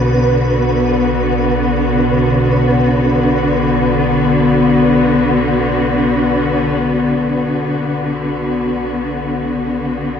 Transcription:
Already playing: synth drone B1 B2, cello section D3 B3 F#4, synth texture B4
7.16 synth drone B1 B2

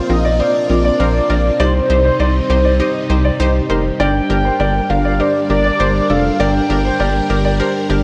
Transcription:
Already playing: string machine A#3 C4 F4, soft synth lead C5
0.10 analog synth bass A#1, synth pluck C4 F4 A#4, soft synth lead D#5
0.25 grand piano D5
0.40 synth pluck C4 F4 A#4, grand piano C5, soft synth lead D5
0.70 analog synth bass A#1, synth pluck C4 F4 A#4
0.85 grand piano D5
1.00 analog synth bass A#1, synth pluck C4 F4 A#4, grand piano C5
1.30 analog synth bass A#1, synth pluck C4 F4 A#4, grand piano D5
1.60 analog synth bass C2, string machine C3 G3 D#4, synth pluck D#4 G4 C5, soft synth lead C5, grand piano D5
1.90 analog synth bass C2, synth pluck D#4 G4 C5
2.05 grand piano C5
2.20 analog synth bass C2, synth pluck D#4 G4 C5, grand piano D5
2.50 analog synth bass C2, synth pluck D#4 G4 C5
2.65 grand piano D5
2.80 synth pluck D#4 G4 D#5, grand piano C5
3.10 analog synth bass C2, synth pluck D#4 G4 C5
3.25 grand piano D5
3.40 analog synth bass C2, synth pluck D#4 G4 C5, grand piano C5
3.70 analog synth bass F1, synth pluck D#4 G4 C5, grand piano A#4
4.00 analog synth bass G1, string machine D4 A#4, synth pluck D4 G4 A#4, grand piano D5, soft synth lead G5
4.30 analog synth bass G1, synth pluck D4 G4 A#4
4.45 grand piano C5
4.60 analog synth bass G1, synth pluck D4 G4 A#4, grand piano D5
4.90 analog synth bass G1, synth pluck D4 G4 A#4, soft synth lead F5
5.05 grand piano D5
5.20 synth pluck D4 G4 A#4, grand piano C5, soft synth lead D5
5.50 analog synth bass G1, synth pluck D4 G4 A#4, soft synth lead D5
5.65 grand piano D5
5.80 analog synth bass G1, synth pluck D4 G4 C5, grand piano C5
6.10 analog synth bass F1, synth pluck D4 G4 A4, grand piano D5, soft synth lead F5
6.40 analog synth bass G1, synth pluck D4 G4 A#4, grand piano D5, soft synth lead G5
6.70 analog synth bass G1, synth pluck D4 G4 A#4
6.85 grand piano C5
7.00 analog synth bass G1, synth pluck D4 G4 A#4, grand piano D5
7.30 analog synth bass G1, synth pluck D4 G4 A#4
7.45 grand piano D5
7.60 synth pluck D4 G4 A#4, grand piano C5
7.90 analog synth bass G1, synth pluck D4 G4 A#4

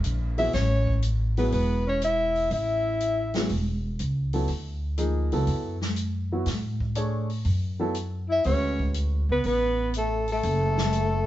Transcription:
0.04 upright bass A#1, closed hi-hat
0.38 grand piano F#3 B3 E4 G#4, alto saxophone E4, soprano saxophone E5, open hi-hat
0.53 upright bass A1, alto saxophone C#4, soprano saxophone C#5, snare, open hi-hat
0.87 kick
1.02 closed hi-hat
1.37 grand piano F#3 B3 E4 G#4, alto saxophone B3, soprano saxophone B4, open hi-hat
1.51 upright bass E1, alto saxophone B3, soprano saxophone B4, open hi-hat
1.87 alto saxophone C#4, soprano saxophone C#5
2.01 alto saxophone E4, soprano saxophone E5, closed hi-hat
2.35 open hi-hat
2.51 upright bass A1, alto saxophone E4, soprano saxophone E5, open hi-hat
3.00 closed hi-hat
3.34 grand piano F#3 B3 E4 G#4, snare, open hi-hat
3.49 upright bass E1, open hi-hat
3.99 upright bass C#2, closed hi-hat
4.33 grand piano F#3 B3 E4 A4, open hi-hat
4.48 upright bass D2, open hi-hat
4.98 grand piano F3 A#3 D#4 G#4, closed hi-hat
5.32 upright bass C#2, grand piano F#3 B3 E4 A4, open hi-hat
5.47 upright bass F#2, open hi-hat
5.81 snare
5.96 closed hi-hat
6.32 grand piano F#3 B3 E4 F#4
6.46 upright bass A2, snare, open hi-hat
6.80 kick
6.95 grand piano A3 D4 G#4 C#5, closed hi-hat
7.30 open hi-hat
7.45 upright bass F#2, open hi-hat
7.80 grand piano F#3 B3 E4 A4
7.94 closed hi-hat
8.29 alto saxophone E4, soprano saxophone E5
8.44 upright bass D2, grand piano G#3 C#4 F#4 B4, alto saxophone C#4, soprano saxophone C#5, open hi-hat
8.79 kick
8.94 closed hi-hat
9.29 upright bass C#2, alto saxophone B3, soprano saxophone B4
9.44 upright bass A1, alto saxophone B3, soprano saxophone B4, open hi-hat
9.94 alto saxophone A3, closed hi-hat
9.98 soprano saxophone A4
10.28 open hi-hat
10.32 alto saxophone A3, soprano saxophone A4
10.43 upright bass F#1, open hi-hat
10.78 snare
10.93 closed hi-hat

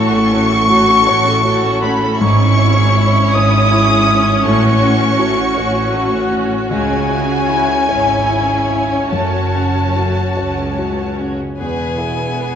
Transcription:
Already playing: double bass section A1, cello section A2, grand piano A2, viola section A3 F#4, violin section A4 C#5 C#6, flute C#6
0.12 viola section C#4 A4, violin section F#4 A4
0.29 violin section A4 C#5
0.33 viola section A3 F#4, grand piano C#4
0.49 viola section C#4 A4, violin section F#4 A4
0.67 viola section A3 F#4, grand piano F#4, violin section A4 C#5
0.86 viola section C#4 A4, violin section F#4 A4
1.05 double bass section A1, cello section A2, viola section A3 F#4, violin section A4 C#5, grand piano C#5
1.26 viola section C#4 A4, violin section F#4 A4
1.44 viola section A3 F#4, grand piano F#4, violin section A4 C#5
1.63 viola section C#4 A4, violin section F#4 A4
1.82 viola section A3 F#4, grand piano C#4, violin section A4 C#5 B5, flute B5
2.01 viola section C#4 A4, violin section F#4 A4
2.19 double bass section G#1, cello section G#2, grand piano G#2, violin section G#3 C#5 C#6, viola section C#4 E4, flute C#6
2.39 violin section C#4
2.58 grand piano C#4, violin section E4
2.75 violin section G#4
2.94 violin section E4, grand piano E4
3.14 violin section C#4
3.33 double bass section G#1, cello section G#2, violin section G#3 D#6, grand piano C#5, flute D#6
3.51 violin section C#4
3.70 violin section E4, grand piano E4
3.87 violin section G#4
4.07 grand piano C#4, violin section E4
4.25 violin section C#4
4.43 double bass section A1, cello section A2, grand piano A2, violin section A3 C#6, viola section F#4, flute C#6
4.61 violin section C#4
4.81 grand piano C#4, violin section F#4
5.00 violin section C#4
5.19 violin section A3, grand piano F#4
5.37 violin section C#4
5.56 double bass section A1, cello section A2, violin section F#4, grand piano C#5
5.75 violin section C#4
5.94 violin section A3, grand piano F#4
6.13 violin section C#4
6.32 grand piano C#4, violin section F#4
6.49 violin section C#4
6.70 grand piano C#2, double bass section C#2, cello section C#3, violin section G#3 C#5 G#5, viola section C#4, flute G#5
6.90 violin section C#4
7.08 grand piano C#4, violin section E4
7.29 violin section G#4
7.49 grand piano E4, violin section E4
7.71 violin section C#4
7.89 double bass section G#1, cello section G#2, violin section G#3, viola section E4, grand piano C#5
8.10 violin section C#4
8.29 violin section E4, grand piano E4
8.50 violin section G#4
8.70 grand piano C#4, violin section E4
8.93 violin section C#4
9.10 double bass section F#1, cello section F#2, grand piano F#2, violin section A3 A5, viola section F#4, flute A5
9.36 violin section C#4
9.55 grand piano C#4, violin section F#4
9.76 violin section C#4
9.96 violin section A3, grand piano F#4
10.16 violin section C#4
10.37 cello section C#2, double bass section C#2, violin section F#4, grand piano C#5
10.59 violin section C#4
10.78 violin section A3, grand piano F#4
10.99 violin section C#4
11.19 grand piano C#4, violin section F#4
11.40 violin section C#4
11.59 double bass section E1, cello section E2, grand piano E2, violin section B3 G#4 B4, viola section B4, violin G#5
11.98 violin section E4, viola section G#4
12.37 violin section G#4, viola section B4

